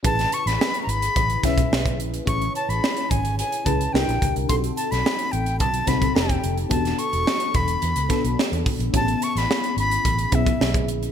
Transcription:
<<
  \new Staff \with { instrumentName = "Flute" } { \time 4/4 \key a \major \tempo 4 = 108 a''8 cis'''16 b''8~ b''32 bes''32 b''4 e''4 r8 | cis'''8 a''16 b''8. gis''8 gis''8 a''8 g''8. r16 | c'''8 a''16 b''8. g''8 a''8 b''8 g''8. r16 | a''8 cis'''4 b''4. r4 |
a''8 cis'''16 b''8. b''4 e''4 r8 | }
  \new Staff \with { instrumentName = "FM electric piano" } { \time 4/4 \key a \major <cis' e' gis' b'>4~ <cis' e' gis' b'>16 r4 r16 <cis' e' gis' b'>4 r8 | <cis' e' gis' cis''>4~ <cis' e' gis' cis''>16 r4 r16 <cis' e' gis' b'>8 <d' e' g' bes'>4 | <c' dis' fis' a'>4~ <c' dis' fis' a'>16 r4 r16 <c' dis' fis' c''>8 <c' ees' g' a'>4 | <b d' fis' a'>4~ <b d' fis' a'>16 r4 r16 <b d' fis' a'>4 r8 |
<b cis' e' g' gis'>4~ <b cis' e' g' gis'>16 r4 r16 <b cis' e' gis'>4 r8 | }
  \new Staff \with { instrumentName = "Fingered electric bass" } { \clef bass \time 4/4 \key a \major a,,8 r16 a,,16 r8 gis,,8 a,,8 b,,8 b,,8 bes,,8 | a,,8 r16 a,,16 r8 gis,,8. r16 cis,8 c,16 bes,,16 cis,16 c,16 | b,,8 r16 b,,16 r8 a,,8 b,,8 c,8 f,,8 f,,8 | e,,8 r16 e,,16 r8 e,,8 e,16 cis,16 r16 b,,16 r16 e,16 r16 bes,,16 |
a,,8 r16 a,,16 r8 gis,,8 a,,8 b,,8 b,,8 bes,,8 | }
  \new DrumStaff \with { instrumentName = "Drums" } \drummode { \time 4/4 <hh bd>16 <hh sn>16 hh16 <hh sn>16 sn16 hh16 hh16 hh16 <hh bd>16 hh16 <hh bd sn>16 <hh bd>16 sn16 <hh bd>16 hh16 hh16 | <hh bd>16 hh16 hh16 hh16 sn16 hh16 <hh bd>16 hh16 hh16 hh16 <hh bd>16 hh16 sn16 hh16 <hh bd>16 hh16 | <hh bd>16 hh16 hh16 <hh sn>16 sn16 hh16 hh16 hh16 <hh bd>16 hh16 <hh bd sn>16 <hh bd>16 sn16 <hh bd>16 hh16 hh16 | <hh bd>16 <hh sn>16 hh16 hh16 sn16 hh16 <hh bd>16 hh16 hh16 hh16 <hh bd sn>16 hh16 sn16 hh16 <hho bd>16 hh16 |
<hh bd>16 hh16 hh16 <hh sn>16 sn16 hh16 hh16 hh16 <hh bd>16 hh16 <hh bd>16 <hh bd>16 sn16 <hh bd>16 hh16 hh16 | }
>>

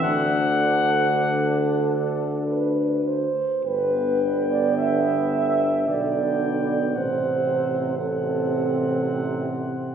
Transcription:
<<
  \new Staff \with { instrumentName = "Flugelhorn" } { \time 3/4 \key g \major \tempo 4 = 55 fis''2 r4 | g''2 g''4 | fis''4 fis''2 | }
  \new Staff \with { instrumentName = "French horn section" } { \time 3/4 \key g \major a'4 a'4 b'8 c''8 | b'8. d''16 e''4 d''4 | c''4 a'4. r8 | }
  \new Staff \with { instrumentName = "Trombone section" } { \time 3/4 \key g \major d'2~ d'8 r8 | b2 b4 | c'4 c'2 | }
  \new Staff \with { instrumentName = "Euphonium" } { \clef bass \time 3/4 \key g \major d2~ d8 r8 | d2 d4 | c4 c2 | }
  \new Staff \with { instrumentName = "Tuba" } { \clef bass \time 3/4 \key g \major d,2~ d,8 r8 | g,,2 b,,4 | a,,2. | }
>>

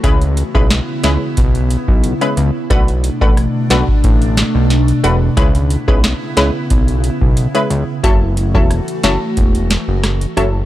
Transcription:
<<
  \new Staff \with { instrumentName = "Synth stab" } { \time 4/4 \key cis \phrygian \tempo 4 = 90 <gis cis' e' b'>16 r8 <gis cis' e' b'>16 r8 <gis cis' e' b'>16 r4. <gis cis' e' b'>16 r8 | <a d' fis' b'>16 r8 <a d' fis' b'>16 r8 <a d' fis' b'>16 r4. r16 <a d' fis' b'>16 r16 | <gis cis' e' b'>16 r8 <gis cis' e' b'>16 r8 <gis cis' e' b'>16 r4. <gis cis' e' b'>16 r8 | <fis cis' e' a'>16 r8 <fis cis' e' a'>16 r8 <fis cis' e' a'>16 r4. r16 <fis cis' e' a'>16 r16 | }
  \new Staff \with { instrumentName = "Ambient pad" } { \time 4/4 \key cis \phrygian <cis b e'>1 | <b, a d'>1 | <cis b e'>1 | <e a fis'>1 | }
  \new Staff \with { instrumentName = "Analog synth bass" } { \clef bass \time 4/4 \key cis \phrygian cis,8. b,,8 r16 cis,16 r16 b,,8. b,,8 r16 cis,16 r16 | b,,8. a,,8 r16 b,,16 r16 a,,8. b,,8. e,,8 | cis,8. b,,8 r16 cis,16 r16 b,,8. b,,8 r16 cis,16 r16 | fis,,8. e,,8 r16 fis,,16 r16 e,,8. fis,,8. fis,,8 | }
  \new DrumStaff \with { instrumentName = "Drums" } \drummode { \time 4/4 <hh bd>16 hh16 hh16 bd16 <hh ss sn>8 <hh sn>8 <hh bd>16 hh16 hh16 bd16 hh16 hh16 hh8 | <hh bd>16 hh16 hh16 bd16 <hh ss>8 <hh sn>16 bd16 <hh bd>16 hh16 <hh sn>8 <hh sn>16 hh16 hh8 | <hh bd>16 hh16 hh16 bd16 <hh ss sn>8 <hh sn>8 <hh bd>16 hh16 hh16 bd16 hh16 hh16 hh8 | <hh bd>8 hh16 bd16 <hh ss>16 hh16 <hh sn>8 <hh bd>16 hh16 <hh sn>8 <hh ss sn>16 hh16 hh8 | }
>>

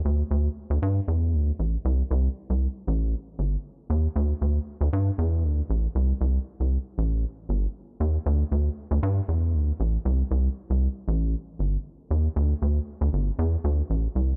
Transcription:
\new Staff \with { instrumentName = "Analog synth bass" } { \clef bass \time 4/4 \key g \major \tempo 4 = 117 d,8 d,8 r16 d,16 g,8 e,8 d,8 a,,8 c,8 | c,8 r16 c,8 r16 a,,8. r16 g,,8 r8 dis,8 | d,8 d,8 r16 d,16 g,8 e,8 d,8 a,,8 c,8 | c,8 r16 c,8 r16 a,,8. r16 g,,8 r8 dis,8 |
d,8 d,8 r16 d,16 g,8 e,8 d,8 a,,8 c,8 | c,8 r16 c,8 r16 a,,8. r16 g,,8 r8 dis,8 | d,8 d,8 r16 d,16 g,,8 e,8 d,8 a,,8 c,8 | }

